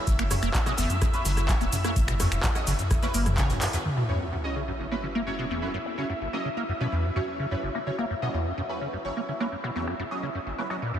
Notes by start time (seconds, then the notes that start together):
Already playing: E5
0.07 F#1, kick, closed hi-hat, shaker
0.19 A#3, finger snap, shaker
0.31 C#3 F#3 C#4 C#5, cross-stick, closed hi-hat, mid tom, open hi-hat, shaker
0.43 E1 A#3, finger snap, closed hi-hat, shaker
0.54 F#2, kick, snare, clap, closed hi-hat, shaker
0.66 B2 F#3 C#4 D#5, cross-stick, closed hi-hat, shaker
0.77 F#1 E2, snare, closed hi-hat, open hi-hat, shaker
0.90 F#2, closed hi-hat, mid tom, shaker
1.02 F#2, kick, cross-stick, closed hi-hat, shaker
1.13 F#3 C#4 B4, closed hi-hat, shaker
1.25 F#1 C#3, snare, closed hi-hat, open hi-hat, shaker
1.37 F#2, cross-stick, closed hi-hat, shaker
1.49 F#1 F#3 C#4 C#5, kick, snare, clap, closed hi-hat, shaker
1.61 E1 A#3, closed hi-hat, shaker
1.72 C#3, closed hi-hat, mid tom, open hi-hat, shaker
1.84 F#3 A#3 C#4 B4, cross-stick, closed hi-hat, shaker
1.96 F#1 F#2, kick, closed hi-hat, shaker
2.08 B2, finger snap, closed hi-hat, shaker
2.20 E2 F#3 C#4 C#5, cross-stick, closed hi-hat, mid tom, open hi-hat, shaker
2.31 E1 F#2, finger snap, closed hi-hat, shaker
2.43 F#2, kick, snare, clap, closed hi-hat, shaker
2.55 F#3 C#4 D#5, cross-stick, closed hi-hat, shaker
2.67 F#1 C#3, snare, closed hi-hat, open hi-hat, shaker
2.79 F#2, closed hi-hat, mid tom, shaker
2.91 F#1, kick, cross-stick, closed hi-hat, shaker
3.02 F#3 A#3 C#4 B4, snare, closed hi-hat, shaker
3.14 F#1 A#3, closed hi-hat, open hi-hat, shaker
3.26 B2, cross-stick, closed hi-hat, mid tom, shaker
3.38 C#3 F#3 C#4 C#5, kick, snare, clap, closed hi-hat, shaker
3.50 F#1 F#2, snare, closed hi-hat, shaker
3.62 F#2, clap, closed hi-hat, open hi-hat, shaker
3.73 E2 F#3 C#4 B4, snare, closed hi-hat, shaker
3.85 F#2 E5, sub drop
3.97 B2, finger snap
4.09 E2 F#3 C#4 C#5
4.21 F#2, finger snap
4.32 F#2
4.44 F#3 C#4 D#5
4.56 C#3
4.68 F#2
4.80 F#1
4.91 F#3 A#3 C#4 B4
5.03 C#3
5.15 A#3
5.27 F#2 F#3 C#4 C#5
5.39 B2
5.51 E2
5.62 F#2 F#3 C#4 B4
5.74 F#2
5.86 finger snap
5.98 C#3 F#3 C#4 C#5
6.10 F#2, finger snap
6.21 F#1
6.33 F#3 A#3 C#4 D#5
6.45 C#3
6.57 A#3
6.69 F#2
6.80 B2 F#3 C#4 B4
6.92 E2
7.04 F#2
7.16 F#2 F#3 C#4 C#5
7.39 C#3
7.51 F#2 F#3 C#4 B4
7.63 F#1
7.75 A#3, finger snap
7.87 C#3 F#3 C#4 C#5
7.99 A#3, finger snap
8.10 F#2
8.22 B2 F#3 C#4 D#5
8.34 E2
8.46 F#2
8.58 F#2
8.69 F#3 C#4 B4
8.81 C#3
8.93 F#2
9.05 F#1 F#3 C#4 C#5
9.17 A#3
9.29 C#3
9.40 F#3 A#3 C#4 B4
9.52 F#2
9.64 B2, finger snap
9.76 E2 F#3 C#4 C#5
9.87 F#2, finger snap
9.99 F#2
10.11 F#3 C#4 D#5
10.23 C#3
10.35 F#2
10.46 F#1
10.58 F#3 A#3 C#4 B4
10.70 F#3 C#4 D#5, finger snap
10.82 A#2
10.94 F#2